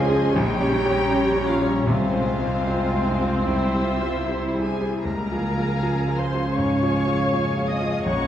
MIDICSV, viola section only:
0, 0, Header, 1, 2, 480
1, 0, Start_track
1, 0, Tempo, 750939
1, 1199, Time_signature, 4, 2, 24, 8
1, 1199, Tempo, 787402
1, 3599, Tempo, 742574
1, 5188, End_track
2, 0, Start_track
2, 0, Title_t, "Viola section"
2, 0, Program_c, 0, 48
2, 0, Note_on_c, 0, 68, 92
2, 228, Note_on_c, 0, 67, 94
2, 231, Note_off_c, 0, 68, 0
2, 947, Note_on_c, 0, 65, 70
2, 948, Note_off_c, 0, 67, 0
2, 1070, Note_off_c, 0, 65, 0
2, 1078, Note_on_c, 0, 61, 75
2, 1198, Note_on_c, 0, 60, 89
2, 1201, Note_off_c, 0, 61, 0
2, 2893, Note_off_c, 0, 60, 0
2, 2894, Note_on_c, 0, 68, 63
2, 3127, Note_off_c, 0, 68, 0
2, 3133, Note_on_c, 0, 70, 75
2, 3845, Note_off_c, 0, 70, 0
2, 3845, Note_on_c, 0, 72, 68
2, 4086, Note_off_c, 0, 72, 0
2, 4089, Note_on_c, 0, 73, 77
2, 4806, Note_on_c, 0, 75, 67
2, 4807, Note_off_c, 0, 73, 0
2, 5043, Note_off_c, 0, 75, 0
2, 5043, Note_on_c, 0, 73, 85
2, 5188, Note_off_c, 0, 73, 0
2, 5188, End_track
0, 0, End_of_file